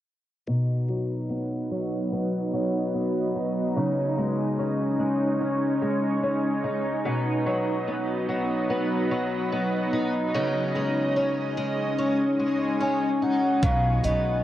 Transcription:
0.47 3.77 B2 medium
0.47 3.73 F#3 medium
0.47 3.73 B3 medium
0.47 13.59 D#4 medium
0.47 3.35 D#4 medium
0.47 3.73 B4 medium
0.47 7.01 D#5 medium
0.89 1.70 F#3 soft
1.30 2.11 B3 medium
1.71 2.52 F#3 soft
2.12 2.93 B3 soft
2.53 3.85 F#3 medium
2.94 3.85 B3 soft
3.35 3.77 D#4 soft
3.76 7.05 C#3 medium
3.76 7.02 G#3 medium
3.76 7.02 C#4 medium
3.76 6.63 D#4 medium
3.76 7.02 C#5 medium
4.18 4.98 G#3 medium
4.59 5.39 C#4 medium
4.99 5.81 G#3 soft
5.41 6.22 C#4 soft
5.82 7.14 G#3 soft
6.23 7.14 C#4 soft
6.64 7.06 D#4 medium
7.05 10.34 B2 medium
7.05 10.31 F#3 medium
7.05 10.31 B3 medium
7.05 9.93 D#4 medium
7.05 10.31 B4 medium
7.05 13.59 D#5 medium
7.46 8.28 F#3 medium
7.88 8.69 B3 medium
8.29 9.10 F#3 medium
8.70 9.51 B3 medium
9.11 10.43 F#3 soft
9.52 10.42 B3 soft
9.93 10.35 D#4 medium
10.34 13.63 C#3 medium
10.34 13.60 G#3 medium
10.34 13.60 C#4 medium
10.34 13.21 D#4 medium
10.34 13.60 C#5 medium
10.75 11.56 G#3 soft
11.16 11.97 C#4 medium
11.57 12.38 G#3 medium
11.98 12.79 C#4 soft
12.39 13.71 G#3 medium
12.81 13.71 C#4 soft
12.81 13.20 G#5 medium
13.22 14.44 D#4 soft
13.22 13.65 F#5 medium
13.63 13.99 B1 medium
13.63 14.44 B2 medium
13.63 14.44 F#3 medium
13.63 14.44 B3 medium
13.63 14.44 D#4 medium
13.63 14.44 B4 medium
13.63 14.44 D#5 medium
13.63 14.06 F5 loud
13.63 kick loud
13.63 closed hi-hat medium
14.04 14.40 B1 medium
14.04 14.44 B3 soft
14.04 14.44 D#5 medium
14.04 closed hi-hat medium

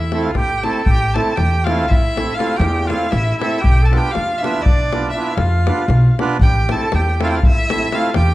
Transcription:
0.00 0.35 E2 medium
0.00 0.27 E4 medium
0.00 0.24 E5 medium
0.12 0.30 A3 medium
0.12 0.30 C4 soft
0.12 0.31 E4 soft
0.12 0.31 A4 medium
0.12 davul high medium
0.23 0.36 F4 medium
0.23 0.35 F5 medium
0.23 davul high soft
0.35 0.66 A1 loud
0.35 0.67 G4 medium
0.35 0.65 G5 loud
0.35 davul high medium
0.35 davul low soft
0.49 davul high soft
0.63 0.81 A3 medium
0.63 0.82 C4 medium
0.63 0.82 E4 medium
0.63 0.83 A4 medium
0.63 0.88 A4 medium
0.63 0.85 A5 medium
0.63 davul high soft
0.85 1.18 A1 medium
0.85 1.15 G5 loud
0.85 davul low medium
0.90 1.17 G4 medium
1.13 1.33 A3 medium
1.13 1.33 C4 medium
1.13 1.34 E4 medium
1.13 1.39 A4 medium
1.13 1.34 A4 medium
1.13 1.37 A5 medium
1.13 davul high medium
1.36 1.90 E2 medium
1.36 1.66 G4 medium
1.36 1.66 G5 loud
1.36 davul high medium
1.64 1.85 A3 medium
1.64 1.91 F4 medium
1.64 1.90 F5 medium
1.64 davul high medium
1.68 1.86 C4 medium
1.68 1.86 E4 medium
1.68 1.86 A4 medium
1.88 2.32 A1 medium
1.88 2.39 E4 medium
1.88 2.36 E5 loud
1.88 davul low medium
2.15 2.33 A3 medium
2.15 2.33 C4 medium
2.15 2.34 E4 medium
2.15 2.34 A4 medium
2.15 davul high medium
2.34 2.55 A3 medium
2.34 2.55 C4 medium
2.34 2.59 F4 medium
2.34 2.58 F5 loud
2.38 2.56 E4 medium
2.38 2.56 A4 medium
2.38 davul high medium
2.57 2.91 E2 loud
2.57 2.88 G4 medium
2.57 2.89 G5 medium
2.61 davul high medium
2.86 3.07 A3 medium
2.86 3.07 C4 medium
2.86 3.07 E4 medium
2.86 3.10 F4 medium
2.86 3.07 A4 medium
2.86 3.12 F5 medium
2.86 davul high medium
3.01 davul high soft
3.09 3.37 E4 medium
3.09 3.38 E5 medium
3.09 davul high medium
3.13 3.30 A1 loud
3.38 3.58 A3 medium
3.38 3.58 C4 medium
3.38 3.63 E4 medium
3.38 3.58 E4 medium
3.38 3.59 A4 medium
3.38 3.61 E5 medium
3.42 davul high medium
3.60 3.84 G4 medium
3.60 3.87 G5 loud
3.64 3.95 B1 medium
3.64 davul low medium
3.83 4.00 A4 medium
3.83 3.99 A5 medium
3.91 4.10 B3 medium
3.91 4.10 D4 medium
3.91 4.10 F4 soft
3.91 4.11 B4 medium
3.91 davul high medium
3.97 4.16 G4 medium
3.97 4.12 G5 loud
4.11 4.40 F5 loud
4.15 4.67 F2 medium
4.15 4.44 F4 medium
4.15 davul high medium
4.38 4.67 E4 medium
4.38 4.64 E5 medium
4.42 4.61 B3 medium
4.42 4.61 D4 medium
4.42 4.62 F4 medium
4.42 4.62 B4 medium
4.42 davul high medium
4.62 5.01 D4 medium
4.62 5.10 D5 loud
4.62 davul low loud
4.67 5.09 B1 medium
4.92 5.11 B3 medium
4.92 5.10 D4 medium
4.92 5.11 F4 medium
4.92 5.11 B4 medium
4.92 davul high medium
5.11 5.36 E5 medium
5.16 5.33 B3 medium
5.16 5.33 D4 medium
5.16 5.39 E4 medium
5.16 5.33 F4 soft
5.16 5.34 B4 medium
5.35 5.69 F2 loud
5.35 6.19 F4 medium
5.35 6.17 F5 medium
5.35 davul high medium
5.67 5.85 B3 medium
5.67 5.85 D4 medium
5.67 5.85 F4 medium
5.67 5.85 B4 medium
5.67 davul high medium
5.79 davul high soft
5.88 6.06 B1 loud
5.88 davul high medium
6.19 6.37 B3 medium
6.19 6.37 D4 medium
6.19 6.37 F4 medium
6.19 6.38 B4 loud
6.19 davul high medium
6.39 6.71 A1 medium
6.39 6.73 G5 loud
6.39 davul low medium
6.43 6.76 G4 medium
6.69 6.88 A3 medium
6.69 6.88 C4 soft
6.69 6.89 E4 medium
6.69 6.89 A4 medium
6.69 6.96 A5 loud
6.69 davul high medium
6.74 6.97 A4 medium
6.92 7.46 E2 medium
6.92 7.22 G4 medium
6.92 7.23 G5 loud
6.92 davul high medium
7.20 7.39 A3 medium
7.20 7.39 C4 medium
7.20 7.39 E4 medium
7.20 7.31 F4 medium
7.20 7.40 A4 medium
7.20 davul high medium
7.24 7.31 F5 medium
7.29 7.44 F4 medium
7.29 7.33 G4 medium
7.29 7.37 G5 medium
7.36 7.46 F5 medium
7.43 7.88 A1 medium
7.43 7.96 E4 medium
7.43 7.96 E5 loud
7.43 davul low loud
7.70 7.88 A3 medium
7.70 7.88 C4 soft
7.70 7.89 E4 soft
7.70 7.89 A4 medium
7.70 davul high medium
7.92 8.10 A3 medium
7.92 8.10 C4 medium
7.92 8.10 E4 medium
7.92 8.16 F4 medium
7.92 8.11 A4 medium
7.92 8.15 F5 loud
7.92 davul high medium
8.14 8.34 E2 loud
8.14 8.34 G4 medium
8.14 8.34 G5 medium
8.14 davul high medium

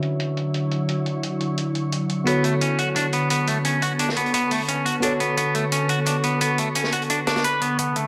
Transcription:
0.00 2.24 D3 medium
0.00 7.75 D3 medium
0.00 2.24 F#3 medium
0.00 2.24 D4 medium
0.00 2.24 E4 medium
0.00 2.25 F#4 medium
0.00 2.26 C#5 medium
0.00 2.27 E5 medium
0.00 7.75 C#6 medium
0.00 closed hi-hat medium
0.20 closed hi-hat medium
0.37 closed hi-hat medium
0.54 closed hi-hat medium
0.72 closed hi-hat medium
0.89 closed hi-hat medium
1.06 closed hi-hat medium
1.23 closed hi-hat medium
1.41 closed hi-hat medium
1.58 closed hi-hat medium
1.75 closed hi-hat medium
1.92 closed hi-hat medium
2.10 closed hi-hat medium
2.24 4.99 B3 medium
2.24 2.43 B3 medium
2.24 7.75 B3 medium
2.24 5.00 F#4 medium
2.24 7.75 A4 medium
2.24 5.01 A4 medium
2.24 closed hi-hat medium
2.29 5.02 C#5 medium
2.44 2.54 A3 medium
2.44 closed hi-hat medium
2.61 2.78 C#4 medium
2.61 closed hi-hat medium
2.79 2.88 F#4 medium
2.79 closed hi-hat medium
2.96 3.05 D4 medium
2.96 closed hi-hat medium
3.13 3.29 B3 medium
3.13 closed hi-hat medium
3.30 3.47 B3 medium
3.30 closed hi-hat medium
3.48 3.57 A3 medium
3.48 closed hi-hat medium
3.65 3.82 C#4 medium
3.65 closed hi-hat medium
3.82 3.92 F#4 medium
3.82 closed hi-hat medium
3.99 4.09 D4 medium
3.99 closed hi-hat medium
4.09 snare medium
4.16 4.32 B3 medium
4.16 closed hi-hat medium
4.26 closed hi-hat soft
4.34 4.50 B3 loud
4.34 closed hi-hat medium
4.51 4.61 A3 medium
4.51 closed hi-hat medium
4.51 open hi-hat medium
4.68 4.85 C#4 medium
4.68 closed hi-hat medium
4.86 4.95 F#4 medium
4.86 closed hi-hat medium
5.00 7.75 B3 medium
5.00 5.12 D4 medium
5.00 7.76 F#4 medium
5.00 7.77 A4 medium
5.00 closed hi-hat medium
5.05 7.78 C#5 medium
5.20 5.36 B3 medium
5.20 closed hi-hat medium
5.37 5.54 B3 loud
5.37 closed hi-hat medium
5.55 5.64 A3 medium
5.55 closed hi-hat medium
5.72 5.89 C#4 medium
5.72 closed hi-hat medium
5.89 5.99 F#4 medium
5.89 closed hi-hat medium
6.06 6.16 D4 medium
6.06 closed hi-hat medium
6.24 6.39 B3 medium
6.24 closed hi-hat medium
6.41 6.57 B3 loud
6.41 closed hi-hat medium
6.58 6.68 A3 medium
6.58 closed hi-hat medium
6.75 6.92 C#4 medium
6.75 closed hi-hat medium
6.84 snare medium
6.92 7.02 F#4 medium
6.92 closed hi-hat medium
7.02 closed hi-hat soft
7.10 7.19 D4 medium
7.10 closed hi-hat medium
7.27 7.43 D4 loud
7.27 snare loud
7.27 closed hi-hat medium
7.36 snare loud
7.36 closed hi-hat medium
7.44 7.60 B4 medium
7.44 closed hi-hat medium
7.62 7.77 B3 medium
7.62 closed hi-hat medium
7.79 8.07 B3 medium
7.79 7.95 B3 loud
7.79 8.07 E4 medium
7.79 8.07 C#5 medium
7.79 closed hi-hat medium
7.79 riser medium
7.96 8.05 A3 medium
7.96 closed hi-hat medium

